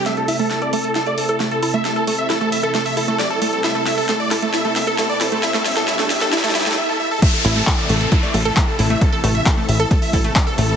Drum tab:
CC |--------------------------------|--------------------------------|--------------------------------|--------------------------------|
HH |x-x-o-o-x-x-o-x-x-x-o-x-x-x-o-x-|x-x-o-x-x-x-o-x-x-o-o-x-x-x-o-x-|x-x-o-o-x-x-o-x-x-x-o-x-x-x-o-x-|x-x-o---x-x-o-x-x-o-o-x---------|
CP |--------------------------------|--------------------------------|--------------------------------|--------------------------------|
SD |o-------o-------o-------o-------|o-------o-------o-------o-------|o---o---o---o---o---o---o---o---|o-o-o-o-o-o-o-o-oooooooo--------|
BD |--------------------------------|--------------------------------|--------------------------------|--------------------------------|

CC |x-------------------------------|--------------------------------|
HH |x---o-o-----o-x-x-x-o-x-x---o-x-|x---o-x-x---o-x-x-o-o-x-x---o-x-|
CP |--------x---------------x-------|--------x---------------x-------|
SD |--------------------------------|--------------------------------|
BD |o-------o-------o-------o-------|o-------o-------o---o---o-------|